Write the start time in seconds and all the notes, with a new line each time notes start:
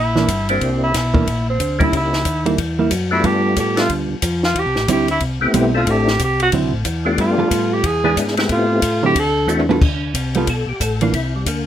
Already playing: A#1
0.00 E4
0.16 E3 A#3 D4, snare
0.28 G1, kick, hi-hat pedal, ride
0.49 A#3 C4 D4 E4 G4, ride
0.61 C2, kick, ride
0.83 E4
0.94 B1 E4, kick, snare, hi-hat pedal, ride
1.14 E3 A#3 D4, kick
1.27 A#1, kick, ride
1.49 C4
1.60 D2, kick, hi-hat pedal, ride
1.79 G3 A#3 C#4 D#4 E4 G4, kick, ride
1.83 E4
1.92 C#2, kick, ride
1.97 E4
2.13 snare
2.25 D#2, kick, hi-hat pedal, ride
2.46 G3 A#3 E4, ride
2.58 E2, kick, ride
2.79 G3 A#3 E4
2.91 F#2, kick, hi-hat pedal, ride
3.11 A3 B3 D4 E4 F4 G4
3.24 G2 G3 B3 F4 G4 A4, kick, ride
3.56 A2 G4, kick, hi-hat pedal, ride
3.77 A3 B3 D4 F4 G4, snare, ride
3.89 D2, kick, ride
4.09 D2
4.22 F2, kick, hi-hat pedal, ride
4.43 F4, snare
4.55 E2 G4, kick, ride
4.66 C2
4.76 A1, snare
4.88 D2 G3 C4 E4 G4, kick, hi-hat pedal, ride
5.08 E4, ride
5.20 C2, kick, ride
5.41 C2 A3 B3 C4 E4 G4
5.53 B1 G3 C4 E4, kick, hi-hat pedal, ride
5.74 A3 C4 D4 E4 F4 A4
5.87 A1 G4, kick, ride
6.08 snare
6.19 C2, kick, hi-hat pedal, ride
6.24 G4
6.40 F#4, ride
6.52 D2 D3 F#3 C4 E4, kick, ride
6.62 C2
6.73 A1
6.85 E2, kick, hi-hat pedal, ride
7.05 A3 B3 D4 F4 G4
7.18 G2 F4, kick, ride
7.38 G2 G3 B3 F4 A4
7.50 A2, kick, hi-hat pedal, ride
7.73 G4
7.83 E2 G#4, kick, ride
8.04 E3 G#3 B3 D4 E4 G#4
8.17 G#2, kick, hi-hat pedal, ride
8.28 snare
8.37 A3 B3 C4 E4 G4, snare, ride
8.49 A2 F4, kick, ride
8.82 A2, kick, hi-hat pedal, ride
9.03 D3 F#3 C4 E4 G4
9.15 D2, kick, ride
9.19 A4
9.47 E2 A3 C4 D4 E4 F#4, hi-hat pedal, high tom
9.60 high tom
9.69 G3 B3 F4 A4, high tom
9.81 D2, kick, crash
10.14 C2, kick, hi-hat pedal, ride
10.34 G3 B3 F4 A4, ride
10.47 B1 A4, kick, ride
10.67 B1 G4
10.80 A1 A4, kick, hi-hat pedal, ride
11.01 E3 A#3 D4 F4, ride
11.13 C2 E4, kick, ride
11.36 G3
11.46 D2 A#3, kick, hi-hat pedal, ride